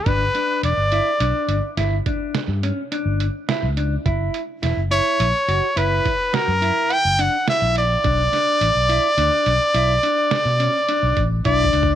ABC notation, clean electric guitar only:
X:1
M:7/4
L:1/8
Q:1/4=105
K:Glyd
V:1 name="Clean electric guitar"
D D2 E D2 E D2 C D2 E D | E2 E E2 F E2 F E2 D E2 | D D2 E D2 E D2 C D2 E D |]